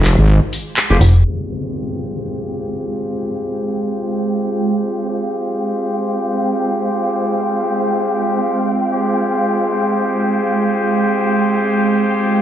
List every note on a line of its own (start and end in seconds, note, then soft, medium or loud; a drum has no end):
0.00 0.16 F1 loud
0.00 1.21 G#3 medium
0.00 1.21 F4 medium
0.00 1.24 G#4 medium
0.05 clap medium
0.05 open hi-hat loud
0.18 0.40 G#1 loud
0.53 open hi-hat loud
0.77 clap loud
0.90 0.99 F1 medium
0.90 0.97 F4 medium
0.90 0.97 G4 medium
0.90 0.97 G#4 medium
0.90 0.97 C5 medium
1.01 1.23 F1 loud
1.01 open hi-hat loud
1.25 12.42 G#3 medium
1.25 12.42 C4 medium
1.25 5.06 F4 medium
1.25 12.42 F4 medium
1.25 5.06 G4 medium
1.25 5.06 G#4 medium
1.25 5.06 C5 medium
1.25 8.91 G5 medium
1.25 downlifter medium
1.49 12.42 G#3 medium
1.62 12.42 F5 medium
1.62 12.42 G5 medium
5.09 8.76 F4 medium
5.09 8.76 G4 medium
5.09 8.76 G#4 medium
5.09 8.76 C5 medium
8.93 12.42 F4 medium
8.93 12.42 G4 medium
8.93 12.42 G#4 medium
8.93 12.42 C5 medium